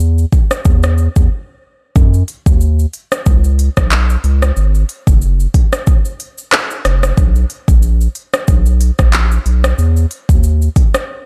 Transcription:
Already playing: E2
0.00 shaker
0.18 shaker
0.32 kick, shaker
0.51 cross-stick, shaker
0.65 E2, kick, shaker
0.83 cross-stick, shaker
0.98 shaker
1.16 E2, kick, shaker
1.96 F#2, kick, shaker
2.14 shaker
2.28 closed hi-hat, shaker
2.46 D#2, kick, shaker
2.61 shaker
2.79 shaker
2.93 closed hi-hat, shaker
3.12 cross-stick, shaker
3.26 C#2, kick, shaker
3.44 shaker
3.59 closed hi-hat, shaker
3.77 B1, kick, cross-stick, shaker
3.91 clap, shaker
4.10 shaker
4.24 C#2, closed hi-hat, shaker
4.42 cross-stick, shaker
4.57 G#1, shaker
4.75 shaker
4.89 closed hi-hat, shaker
5.07 F#1, kick, shaker
5.22 shaker
5.40 shaker
5.54 kick, closed hi-hat, shaker
5.73 cross-stick, shaker
5.87 kick, shaker
6.05 shaker
6.20 closed hi-hat, shaker
6.38 shaker
6.52 cross-stick, clap, shaker
6.71 shaker
6.85 F#1, cross-stick, closed hi-hat, shaker
7.03 cross-stick, shaker
7.17 B1, kick, shaker
7.36 shaker
7.50 closed hi-hat, shaker
7.68 A#1, kick, shaker
7.82 shaker
8.01 shaker
8.15 closed hi-hat, shaker
8.34 cross-stick, shaker
8.48 B1, kick, shaker
8.66 shaker
8.81 closed hi-hat, shaker
8.99 A#1, kick, cross-stick, shaker
9.13 clap, shaker
9.32 shaker
9.46 B1, closed hi-hat, shaker
9.64 cross-stick, shaker
9.78 E2, shaker
9.97 shaker
10.11 closed hi-hat, shaker
10.29 D#2, kick, shaker
10.43 shaker
10.62 shaker
10.76 kick, closed hi-hat, shaker
10.94 cross-stick, shaker

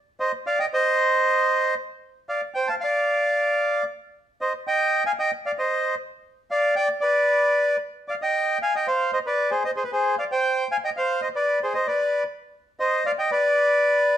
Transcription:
0.20 C5 D#5
0.47 D5 F5
0.60 D#5 G5
0.74 C5 D#5
2.29 D5 F5
2.54 C5 G5
2.68 F5 A5
2.80 D5 F5
4.41 C5 D#5
4.67 D#5 G5
5.06 F5 G#5
5.19 D#5 G5
5.46 D5 F5
5.58 C5 D#5
6.51 D5 F5
6.76 D5 G5
7.01 B4 D5
8.08 D5 F5
8.22 D#5 G5
8.62 F5 G#5
8.75 D#5 G5
8.87 C5 F5
9.13 C5 D#5
9.27 B4 D5
9.51 G#4 C5
9.64 C5 D#5
9.76 G#4 C5
9.84 B4
9.92 G#4 C5
10.18 D5 F5
10.32 C5 G5
10.72 F5 G#5
10.84 D#5 G5
10.97 C5 F5
11.22 C5 D#5
11.36 B4 D5
11.63 G#4 C5
11.74 C5 D#5
11.87 B4 D5
12.80 C5 D#5
13.06 D5 F5
13.19 D#5 G5
13.31 B4 D5

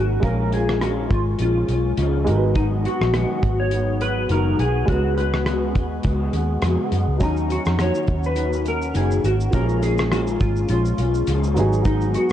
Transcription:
Already playing: G#1 F#3 A#3 C#4 D#4 F#4 A#4
0.20 A#1 A#2 F3 G#3 C#4 F4 A#4, kick, closed hi-hat
0.24 F4 A#4
0.50 G#3 C#4 F4 G#4, closed hi-hat
0.69 cross-stick
0.80 A#2 F3 G#3 C#4 F4 F#4, cross-stick, closed hi-hat
1.09 G#1 G#3 C#4 F4, kick, closed hi-hat
1.38 A#1 F3 G#3 C#4 F4, closed hi-hat
1.67 B1 G#3 C#4 F4, closed hi-hat
1.97 C#2 A#2 F3 G#3 C#4 F4, closed hi-hat
2.24 G#1 G#3 B3 D#4 F#4, closed hi-hat
2.29 F#3 A#4
2.36 B4
2.55 G#2 D#3 F#3 B3 D#4 F#4, kick, closed hi-hat
2.83 F#3 B3 F#4, closed hi-hat
3.01 A#1, cross-stick
3.13 G#2 D#3 F#3 B3 F#4, cross-stick, closed hi-hat
3.42 G#1 F#3 B3 F#4, kick, closed hi-hat
3.60 C#5
3.71 D#3 F#3 B3 F#4, closed hi-hat
4.00 F#3 B3 F#4 B4, closed hi-hat
4.29 F#1 G#2 D#3 F#3 B3 F#4 A#4, closed hi-hat
4.58 B1 F#3 B3 F#4 G#4, closed hi-hat
4.86 C#2 C#3 G#3 B3 C#4 F#4, kick, closed hi-hat
4.90 F#4 B4
5.16 G#3 B3 F#4 B4, closed hi-hat
5.34 cross-stick
5.46 C#3 G#3 B3 F#4, cross-stick, closed hi-hat
5.75 D#2 G#3 B3 F#4, kick, closed hi-hat
6.03 C#2 C#3 G#3 B3 F#4, kick, closed hi-hat
6.32 D#2 G#3 B3 F#4, closed hi-hat
6.62 F2 C#3 G#3 B3 F#4, cross-stick, closed hi-hat
6.91 F#2 G#3 B3 F#4, closed hi-hat
7.07 C#2
7.18 D#2 D#3 F#3 A#3 C#4 D#4 F#4, kick, closed hi-hat, shaker
7.23 D#4 A#5
7.37 shaker
7.49 A#3 C#4 F#4, closed hi-hat, shaker
7.65 F2, cross-stick, shaker
7.78 D#3 A#3 C#4 F#4 C#5, cross-stick, closed hi-hat, shaker
7.95 shaker
8.07 D#2 A#3 C#4, kick, closed hi-hat, shaker
8.23 B4, shaker
8.36 D#3 A#3 C#4 F#4, closed hi-hat, shaker
8.53 shaker
8.64 A#3 C#4 F#4 A#4, closed hi-hat, shaker
8.82 shaker
8.93 F#1 D#3 A#3 C#4 F#4 G#4, closed hi-hat, shaker
9.11 shaker
9.22 G#1 A#3 C#4 F#4, closed hi-hat, shaker
9.40 shaker
9.51 A#1 A#2 F3 G#3 A#3 C#4 A#4, kick, closed hi-hat, shaker
9.55 F4 F#4
9.63 G#4
9.69 shaker
9.81 G#3 C#4 F4 G#4, closed hi-hat, shaker
9.98 cross-stick, shaker
10.10 A#2 F3 G#3 C#4 F4 F#4, cross-stick, closed hi-hat, shaker
10.27 shaker
10.39 G#1 G#3 C#4 F4, kick, closed hi-hat, shaker
10.56 shaker
10.68 A#1 F3 G#3 C#4 F4, closed hi-hat, shaker
10.85 shaker
10.98 B1 G#3 C#4 F4, closed hi-hat, shaker
11.14 shaker
11.27 C#2 A#2 F3 G#3 C#4 F4, closed hi-hat, shaker
11.44 shaker
11.54 G#1 F#3 B3 D#4 F#4, closed hi-hat, shaker
11.59 F#3 G#4
11.73 shaker
11.85 G#2 D#3 F#3 B3 D#4 F#4, kick, closed hi-hat, shaker
12.01 shaker
12.14 F#3 B3 F#4, closed hi-hat, shaker

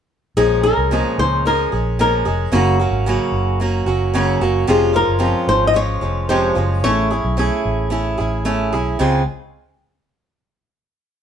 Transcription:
0.37 A#1 A#2 F3 G#3 C#4 G#4
0.63 G#3 C#4 G#4 A#4
0.77 C2
0.91 A#2 F3 G#3 C#4 G#4
1.18 C#2 C5
1.45 F3 G#3 C#4 G#4 A#4
1.72 A#1 G#3 C#4 G#4
1.99 A#2 F3 G#3 C#4 G#4 A#4
2.25 F1 G#3 C#4 G#4
2.52 F#1 F#2 C#3 F#3 A#3 C#4 F#4
2.80 F#3 A#3 C#4 F#4
2.91 G#1
3.06 F#2 C#3 F#3 A#3 C#4 F#4
3.32 F#1
3.60 F#3 A#3 C#4 F#4
3.86 F#1 F#3 A#3 C#4 F#4
4.14 F#2 C#3 F#3 A#3 C#4 F#4
4.41 F#1 F#3 A#3 C#4 F#4
4.67 F1 F2 C3 F3 G#3 C#4 F4 G#4
4.93 F3 G#3 C#4 F4 A#4
5.07 F#1
5.19 F2 F3 G#3 C#4 F4
5.47 G#1 C5
5.67 D#5
5.74 F3 G#3 C#4 F4 C#5
6.01 F1 F3 G#3 C#4 F4
6.29 F2 C3 F3 G#3 C#4 F4 C5
6.55 F#1 F3 G#3 C#4 F4
6.83 A1 A3 C#4 E4 G#4 C#5
7.11 C#4 E4 G#4
7.25 B1
7.37 A3 C#4 E4 G#4
7.65 A1
7.90 A3 C#4 E4 G#4
8.18 A1 C#4 E4 G#4
8.45 A3 C#4 E4 G#4
8.73 B1 C#4 E4 G#4
8.99 C#2 C#3 G#3 C4 F4 G#4

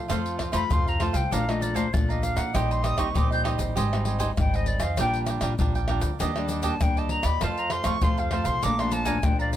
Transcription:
0.08 F2 F3 A3 C4 F4 A4 C5 F5, pandeiro, tamborim, shaker, surdo
0.26 pandeiro, shaker
0.38 F4 A4 C5 F5, pandeiro, tamborim, surdo
0.52 F2 A3 C4 F4 A4 C5 F5 B5, pandeiro, tamborim, shaker, surdo
0.70 F2 C3 F4 A4 C5 F5 C6, pandeiro, shaker, surdo
0.87 A4 C5 F5 A#5, pandeiro, shaker
1.00 A3 C4 F4 A4 C5 F5 A5, pandeiro, tamborim
1.13 C2 A4 C5 F5 G5, pandeiro, shaker, surdo
1.31 A#1 A#2 A3 D4 F4 A4 D5 F5 A#5, pandeiro, shaker, surdo
1.48 A3 D4 F4 D#5, pandeiro, tamborim, shaker
1.60 A4 D5 F5 A#5, pandeiro, shaker
1.74 A3 D4 F4 A4 C5 D5 F5 A#5, pandeiro, shaker, surdo
1.93 A#1 F3 A3 D4 F4 D5, pandeiro, tamborim, shaker, surdo
2.09 D5 D#5 F5 A#5, pandeiro, shaker
2.23 F5, pandeiro, shaker
2.36 A#2 D5 F5 F#5 A#5, pandeiro, tamborim, shaker, surdo
2.54 A#1 A#2 G3 C4 D#4 G4 C5 D#5 G5, pandeiro, tamborim, shaker, surdo
2.71 C6, pandeiro, shaker
2.82 D#4 G4 C5 D#5 D#6, pandeiro, tamborim, shaker
2.97 A#1 G3 C4 D#4 G4 C5 D#5 C#6, pandeiro, tamborim, shaker, surdo
3.14 A#1 A#2 D#4 G4 C5 D#5 D6, pandeiro, shaker, surdo
3.30 G4 C5 D#5 G6, pandeiro, shaker
3.43 G3 C4 D#4 G4 C5 D#5, pandeiro, tamborim
3.58 A1 G4 C5 D#5, pandeiro, shaker, surdo
3.75 G#1 G#2 G3 C4 D#4 G4 C5 D#5 G#5, pandeiro, shaker, surdo
3.93 G3 C4 D#4, pandeiro, tamborim, shaker
4.05 G4 C5 D#5 G#5, pandeiro
4.18 G3 C4 D#4 G4 C5 D#5 G#5, pandeiro, shaker, surdo
4.37 G#1 D#3 G3 C4 D#4 G5, pandeiro, tamborim, shaker, surdo
4.53 C5 D#5 G#5, pandeiro, shaker
4.66 D5, pandeiro
4.80 F2 C5 D#5 F5 G#5, pandeiro, tamborim, shaker, surdo
4.97 A#1 A#2 G3 D4 F4 A#4 D5 G5, pandeiro, tamborim, shaker, surdo
5.14 pandeiro, shaker
5.26 D4 A#4 D5 G5, pandeiro, tamborim, shaker
5.41 A#1 G3 D4 F4 A#4 D5 G5, pandeiro, tamborim, shaker, surdo
5.58 A#1 F3 G3 D4 F4 A#4 D5 G5, pandeiro, shaker, surdo
5.75 A#4 D5 G5, pandeiro, shaker
5.88 G3 D4 F4 A#4 D5 G5, pandeiro, tamborim
6.01 D2 A#4 D5 G5, pandeiro, shaker, surdo
6.19 D#2 D#3 G3 A#3 D4 G4 D5 D#5, pandeiro, shaker, surdo
6.36 G3 A#3 D4, pandeiro, tamborim, shaker
6.49 D4 G4 D5 D#5, pandeiro, shaker
6.62 G3 A#3 D4 G4 D5 D#5 A5, pandeiro, shaker, surdo
6.81 D#2 A#2 G3 A#3 D4 G5, pandeiro, tamborim, shaker, surdo
6.97 G4 D5 D#5 A5, pandeiro, shaker
7.09 A#5, pandeiro
7.23 D#2 G4 D5 D#5 B5, pandeiro, tamborim, shaker, surdo
7.41 F2 F3 A3 C4 F4 A4 C5 F5 A5, pandeiro, tamborim, shaker, surdo
7.58 A#5, pandeiro, shaker
7.70 F4 A4 C5 F5 C6, pandeiro, tamborim
7.84 F2 F3 A3 C4 F4 A4 C5 F5 C#6, pandeiro, tamborim, shaker, surdo
8.02 F2 C3 F3 A3 C4 F4 A4 C5 F5 C6, pandeiro, shaker, surdo
8.18 A4 C5 F5, pandeiro, shaker
8.30 F3 A3 C4 F4 A4 C5 F5 A5, pandeiro, tamborim
8.44 B1 A4 C5 F5 C6, pandeiro, shaker, surdo
8.62 A#1 A#2 F3 A3 D4 A4 D5 F5 A#5 D6, pandeiro, shaker, surdo
8.79 F3 A3 D4 C6, pandeiro, tamborim, shaker
8.91 A4 D5 F5 A5 A#5, pandeiro, shaker
9.05 F3 A3 D4 A4 D5 F5 G#5 A#5, pandeiro, shaker, surdo
9.23 A#1 F2 F3 A3 D4 G5, pandeiro, tamborim, shaker, surdo
9.39 D5 F5 A#5, pandeiro, shaker
9.53 pandeiro, shaker

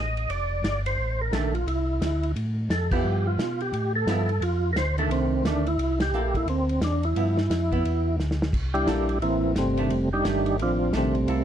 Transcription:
Already playing: A1 D#5
0.17 ride
0.28 F1 D5, ride
0.63 G1, snare, hi-hat pedal, ride
0.86 C5, ride
0.98 A1
1.21 A#4
1.32 A#1 D#3 A3 D4 A4, snare, hi-hat pedal, ride
1.54 F4, ride
1.66 C2 E4, ride
2.01 D2, snare, hi-hat pedal, ride
2.23 ride
2.36 A2, ride
2.70 F2 A4, snare, hi-hat pedal, ride
2.91 F3 B3 E4 G4, kick, crash
3.04 G2
3.27 F4
3.38 B2, snare, hi-hat pedal, ride
3.60 G4, ride
3.73 A2, ride
3.96 A4
4.06 G2 F3 B3 E4, snare, hi-hat pedal, ride
4.29 ride
4.41 F2 F4, ride
4.73 D2 A#4, snare, hi-hat pedal, ride
4.77 C5
4.98 D#3 A3 D4 A4, ride
5.09 C2 C4, ride
5.43 D2 D#3 A3 D4, snare, hi-hat pedal, ride
5.66 E4, ride
5.78 C2, ride
6.00 G4, snare, ride
6.12 A#1 A#3 E4 A4, hi-hat pedal
6.34 E4, kick, ride
6.46 D2 C4, ride
6.69 ride
6.81 E2 D4, snare, hi-hat pedal, ride
7.03 E4, ride
7.15 G2 F3 B3 E4, ride
7.38 snare
7.50 F2, snare, hi-hat pedal, ride
7.72 B3 E4, kick, ride
7.84 E2, ride
8.18 D2, snare, hi-hat pedal
8.31 snare
8.42 snare
8.53 C2, kick, crash
8.74 G3 D4 E4 G4, ride
8.86 A#1 A#3 E4 A4, snare, hi-hat pedal, ride
9.09 ride
9.20 A1 E3 A#3 C4 E4, ride
9.55 G1 C3 G3 A3 C4, snare, hi-hat pedal, ride
9.77 D#3 A3 D4, ride
9.90 F1, ride
10.13 G3 D4 D#4 G4
10.24 G1 D#3 A3, snare, hi-hat pedal, ride
10.46 ride
10.58 A1 C4, ride
10.62 F3 D4 F4
10.93 A#1 D#3 A3 D4, snare, hi-hat pedal, ride
10.97 C3 G3 A3 C4
11.15 ride
11.28 C2 A#3 E4 A4, ride

